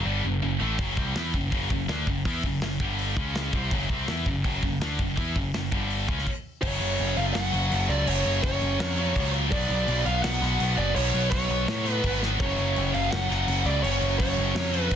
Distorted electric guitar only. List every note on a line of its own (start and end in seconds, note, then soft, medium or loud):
0.05 0.23 G2 medium
0.05 0.24 D3 medium
0.05 0.24 G3 medium
0.24 0.39 F#2 medium
0.24 0.39 C#3 medium
0.42 0.57 F#2 medium
0.42 0.57 C#3 medium
0.60 0.78 A2 medium
0.60 0.79 E3 medium
0.60 0.79 A3 medium
0.79 0.97 F#2 medium
0.79 0.97 C#3 medium
0.79 0.97 F#3 loud
0.97 1.15 C3 medium
0.97 1.15 G3 loud
0.97 1.16 C4 medium
1.15 1.33 E3 medium
1.15 1.34 B3 loud
1.15 1.34 E4 medium
1.34 1.49 F#2 medium
1.34 1.49 C#3 medium
1.52 1.69 F#2 medium
1.52 1.70 C#3 loud
1.52 1.71 F#3 medium
1.70 1.85 F#2 medium
1.70 1.85 C#3 medium
1.88 2.06 D3 medium
1.88 2.07 A3 loud
1.88 2.07 D4 loud
2.07 2.22 F#2 medium
2.07 2.22 C#3 medium
2.26 2.43 E3 loud
2.26 2.44 B3 medium
2.26 2.44 E4 loud
2.44 2.59 F#2 medium
2.44 2.59 C#3 medium
2.63 2.77 F#2 medium
2.63 2.77 C#3 medium
2.81 3.17 G2 loud
2.81 3.16 D3 medium
2.81 3.17 G3 loud
3.17 3.53 C#3 medium
3.17 3.53 G#3 loud
3.17 3.53 C#4 medium
3.53 3.71 C3 medium
3.53 3.71 G3 medium
3.53 3.72 C4 medium
3.72 3.89 F#2 medium
3.72 3.89 C#3 medium
3.72 3.90 F#3 loud
3.90 4.07 C3 medium
3.90 4.08 G3 medium
3.90 4.08 C4 loud
4.07 4.25 E3 medium
4.07 4.26 B3 medium
4.07 4.26 E4 loud
4.26 4.41 F#2 medium
4.26 4.41 C#3 medium
4.44 4.61 F#2 medium
4.44 4.62 C#3 medium
4.44 4.63 F#3 loud
4.62 4.77 F#2 medium
4.62 4.77 C#3 medium
4.82 4.99 D3 loud
4.82 4.99 A3 medium
4.82 5.00 D4 medium
5.00 5.14 F#2 medium
5.00 5.15 C#3 medium
5.17 5.35 E3 loud
5.17 5.36 B3 medium
5.17 5.36 E4 loud
5.36 5.51 F#2 medium
5.36 5.51 C#3 medium
5.54 5.69 F#2 medium
5.54 5.69 C#3 medium
5.72 6.08 G2 medium
5.72 6.08 D3 loud
5.72 6.09 G3 loud
6.08 6.26 C#3 medium
6.08 6.26 G#3 loud
6.08 6.27 C#4 loud
6.62 7.52 F#2 medium
6.62 7.53 C#3 medium
6.66 7.52 F#3 loud
7.52 7.69 F#2 medium
7.52 7.71 C#3 medium
7.52 7.74 F#3 medium
7.70 8.05 F#2 medium
7.70 8.07 C#3 medium
7.74 8.10 F#3 medium
8.06 8.96 F#2 loud
8.06 8.97 C#3 medium
8.10 8.97 F#3 loud
8.98 9.14 F#2 medium
8.98 9.16 C#3 medium
8.98 9.19 F#3 medium
9.15 9.51 F#2 medium
9.15 9.51 C#3 medium
9.19 9.53 F#3 medium
9.51 10.41 B2 medium
9.51 10.43 F#3 medium
9.51 10.40 B3 loud
10.41 10.61 F#3 medium
10.41 10.59 B3 medium
10.45 10.58 B2 medium
10.59 10.93 B2 medium
10.59 10.96 F#3 medium
10.59 10.97 B3 medium
10.94 11.84 B2 medium
10.94 11.87 F#3 loud
10.98 11.84 B3 loud
11.85 12.05 F#3 medium
11.85 12.03 B3 medium
11.89 12.02 B2 medium
12.03 12.39 B2 medium
12.03 12.43 F#3 medium
12.07 12.41 B3 loud
12.39 13.29 F#2 medium
12.39 13.30 C#3 loud
12.43 13.29 F#3 loud
13.29 13.46 F#2 medium
13.29 13.48 C#3 medium
13.29 13.51 F#3 medium
13.47 13.82 F#2 medium
13.47 13.84 C#3 medium
13.51 13.86 F#3 loud
13.83 14.72 F#2 medium
13.83 14.73 C#3 loud
13.83 14.72 F#3 loud
14.72 14.89 F#2 medium
14.72 14.91 C#3 medium
14.72 14.94 F#3 medium
14.90 14.96 F#2 medium
14.90 14.96 C#3 loud